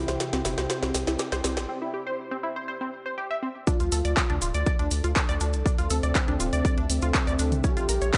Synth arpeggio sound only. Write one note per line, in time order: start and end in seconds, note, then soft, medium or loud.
0.08 0.17 C5 medium
0.33 0.38 C4 loud
0.45 0.51 E4 medium
0.58 0.69 C5 medium
0.70 0.80 C5 medium
0.83 0.92 C4 medium
1.07 1.13 E4 medium
1.19 1.25 G4 medium
1.32 1.38 C5 loud
1.44 1.56 C4 medium
1.69 1.79 C4 medium
1.82 1.91 E4 medium
1.94 2.00 G4 medium
2.07 2.16 C5 medium
2.31 2.37 C4 loud
2.43 2.49 E4 medium
2.56 2.67 C5 medium
2.68 2.78 C5 medium
2.81 2.90 C4 medium
3.06 3.11 C5 medium
3.18 3.27 G4 medium
3.31 3.36 E5 medium
3.42 3.48 C4 medium
3.67 3.77 D4 medium
3.80 3.89 F4 medium
3.92 3.98 A4 medium
4.05 4.14 D5 medium
4.30 4.35 D4 loud
4.42 4.48 F4 medium
4.54 4.65 D5 medium
4.66 4.76 D5 medium
4.79 4.88 D4 medium
5.04 5.10 F4 medium
5.16 5.22 A4 medium
5.29 5.34 D5 loud
5.41 5.53 D4 medium
5.66 5.75 D4 medium
5.78 5.88 F4 medium
5.90 5.96 A4 medium
6.03 6.12 D5 medium
6.28 6.34 D4 loud
6.40 6.46 F4 medium
6.53 6.64 D5 medium
6.65 6.75 D5 medium
6.78 6.87 D4 medium
7.02 7.08 F4 medium
7.14 7.20 A4 medium
7.27 7.33 D5 loud
7.39 7.51 D4 medium
7.64 7.74 C#4 medium
7.77 7.86 F4 medium
7.89 7.95 A#4 medium
8.02 8.11 C#5 medium